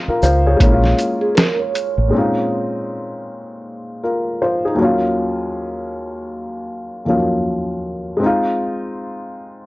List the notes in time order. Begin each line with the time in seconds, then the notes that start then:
Already playing: G#3 C4 D#4 F4 A#4 D#5
0.08 F4 A#4, muted fingered electric bass stroke
0.23 C#2 F4 C5, shaker
0.46 G#4 C#5
0.57 A#1 G#3 A#3, kick, closed hi-hat
0.63 C#4 E4
0.73 F4
0.84 snare
0.99 closed hi-hat, shaker
1.21 G#4
1.35 A#4, snare, closed hi-hat
1.59 C#5
1.75 closed hi-hat, shaker
1.98 A1
2.08 A#2 G#3
2.12 C4 C#4 D#4
2.18 F4
4.04 F4 A#4
4.42 F4 C5
4.65 D#4 G#4
4.75 D#2 F#3
4.79 A#3 C#4
4.84 F4
7.05 D#2 F3 A#3 C#4
7.10 F#3 F4
8.17 G#3 C4
8.23 D#4 F4